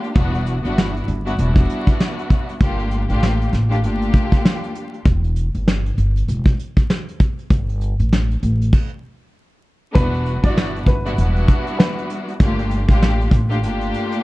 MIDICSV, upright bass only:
0, 0, Header, 1, 2, 480
1, 0, Start_track
1, 0, Key_signature, 1, "minor"
1, 0, Tempo, 612245
1, 122, Time_signature, 4, 2, 24, 8
1, 11157, End_track
2, 0, Start_track
2, 0, Title_t, "Upright bass"
2, 0, Program_c, 0, 32
2, 124, Note_on_c, 0, 28, 111
2, 452, Note_off_c, 0, 28, 0
2, 508, Note_on_c, 0, 31, 83
2, 797, Note_off_c, 0, 31, 0
2, 846, Note_on_c, 0, 31, 94
2, 1051, Note_off_c, 0, 31, 0
2, 1086, Note_on_c, 0, 28, 93
2, 1291, Note_off_c, 0, 28, 0
2, 2045, Note_on_c, 0, 31, 104
2, 2372, Note_off_c, 0, 31, 0
2, 2428, Note_on_c, 0, 33, 87
2, 2718, Note_off_c, 0, 33, 0
2, 2767, Note_on_c, 0, 33, 92
2, 3005, Note_off_c, 0, 33, 0
2, 3005, Note_on_c, 0, 31, 106
2, 3211, Note_off_c, 0, 31, 0
2, 3965, Note_on_c, 0, 28, 111
2, 4292, Note_off_c, 0, 28, 0
2, 4348, Note_on_c, 0, 31, 86
2, 4638, Note_off_c, 0, 31, 0
2, 4686, Note_on_c, 0, 31, 91
2, 4891, Note_off_c, 0, 31, 0
2, 4926, Note_on_c, 0, 28, 91
2, 5131, Note_off_c, 0, 28, 0
2, 5885, Note_on_c, 0, 31, 105
2, 6212, Note_off_c, 0, 31, 0
2, 6269, Note_on_c, 0, 33, 86
2, 6558, Note_off_c, 0, 33, 0
2, 6607, Note_on_c, 0, 33, 94
2, 6812, Note_off_c, 0, 33, 0
2, 7806, Note_on_c, 0, 28, 108
2, 8133, Note_off_c, 0, 28, 0
2, 8184, Note_on_c, 0, 31, 87
2, 8476, Note_off_c, 0, 31, 0
2, 8519, Note_on_c, 0, 31, 96
2, 8727, Note_off_c, 0, 31, 0
2, 8766, Note_on_c, 0, 28, 97
2, 8971, Note_off_c, 0, 28, 0
2, 9725, Note_on_c, 0, 31, 108
2, 10052, Note_off_c, 0, 31, 0
2, 10104, Note_on_c, 0, 33, 91
2, 10395, Note_off_c, 0, 33, 0
2, 10439, Note_on_c, 0, 33, 98
2, 10686, Note_off_c, 0, 33, 0
2, 10686, Note_on_c, 0, 31, 109
2, 10891, Note_off_c, 0, 31, 0
2, 11157, End_track
0, 0, End_of_file